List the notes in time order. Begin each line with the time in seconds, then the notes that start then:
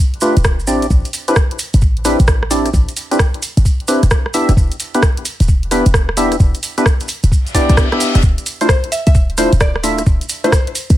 0.14 closed hi-hat
0.21 A3 D4 F4 G4 B4, maracas
0.37 D1, closed hi-hat, maracas
0.44 kick, cross-stick, maracas
0.60 A1, maracas
0.67 C4 D4 E4 G4 D5, maracas
0.82 closed hi-hat, maracas
0.90 A1, kick, maracas
1.05 closed hi-hat, maracas
1.13 open hi-hat, maracas
1.28 C4 D4 E4 G4 B4, closed hi-hat, maracas
1.36 kick, cross-stick, maracas
1.51 closed hi-hat
1.59 open hi-hat, maracas
1.74 G1, closed hi-hat, maracas
1.82 A1, kick, maracas
1.97 closed hi-hat
2.05 C4 D4 E4 G4 B4, cross-stick, open hi-hat, maracas
2.19 A1, closed hi-hat, maracas
2.28 kick, cross-stick, maracas
2.43 cross-stick
2.51 C4 D4 E4 G4 D5, open hi-hat, maracas
2.66 cross-stick, closed hi-hat, maracas
2.74 A1, kick, maracas
2.89 closed hi-hat, maracas
2.97 open hi-hat, maracas
3.11 C4 D4 E4 G4 B4, closed hi-hat, maracas
3.19 kick, cross-stick, maracas
3.34 closed hi-hat
3.42 open hi-hat, maracas
3.57 G1, closed hi-hat, maracas
3.65 kick, maracas
3.80 closed hi-hat
3.88 C4 D4 E4 G4 B4, open hi-hat, maracas
4.03 E1, cross-stick, closed hi-hat, maracas
4.11 kick, cross-stick, maracas
4.26 cross-stick
4.34 B3 D4 E4 G4 E5, open hi-hat, maracas
4.49 E1, cross-stick, closed hi-hat, maracas
4.57 E1, kick, maracas
4.71 closed hi-hat, maracas
4.80 open hi-hat, maracas
4.94 B3 D4 E4 G4 B4, closed hi-hat, maracas
5.02 kick, cross-stick, maracas
5.17 closed hi-hat
5.25 open hi-hat, maracas
5.40 D1, closed hi-hat, maracas
5.48 E1, kick, maracas
5.63 closed hi-hat
5.71 B3 D4 E4 G4 B4, cross-stick, open hi-hat, maracas
5.86 E1, closed hi-hat, maracas
5.94 kick, cross-stick, maracas
6.09 cross-stick
6.17 B3 D4 E4 G4 E5, open hi-hat, maracas
6.32 cross-stick, closed hi-hat, maracas
6.40 E1, kick, maracas
6.54 closed hi-hat, maracas
6.63 open hi-hat, maracas
6.78 B3 D4 E4 G4 B4, closed hi-hat, maracas
6.86 kick, cross-stick, maracas
7.00 closed hi-hat, maracas
7.08 open hi-hat, maracas
7.23 D1, closed hi-hat, maracas
7.32 kick, reverse cymbal, maracas
7.47 closed hi-hat, maracas
7.54 B3 D4 E4 G4 D5, kick, open hi-hat, maracas
7.69 B1, cross-stick, closed hi-hat, maracas
7.77 kick, cross-stick, maracas
7.92 B3 D4 E4 G4 E5, cross-stick, closed hi-hat
8.00 open hi-hat, maracas
8.15 E1, cross-stick, closed hi-hat, maracas
8.23 D1, kick, maracas
8.38 closed hi-hat, maracas
8.46 open hi-hat, maracas
8.61 A3 D4 E4 F4 C5, closed hi-hat, maracas
8.69 C5, kick, cross-stick, maracas
8.84 closed hi-hat
8.92 E5, open hi-hat, maracas
9.07 C2 E5, closed hi-hat, maracas
9.15 D1, kick, maracas
9.30 closed hi-hat
9.38 A3 D4 E4 F4 C5, cross-stick, open hi-hat, maracas
9.53 D1, closed hi-hat, maracas
9.60 D5, kick, cross-stick, maracas
9.76 cross-stick
9.83 A3 D4 E4 F4 E5, open hi-hat, maracas
9.98 cross-stick, closed hi-hat, maracas
10.07 D1, kick, maracas
10.21 closed hi-hat, maracas
10.29 open hi-hat, maracas
10.44 A3 D4 E4 F4 C5, closed hi-hat, maracas
10.52 kick, cross-stick, maracas
10.67 closed hi-hat
10.75 open hi-hat, maracas
10.90 C2, closed hi-hat, maracas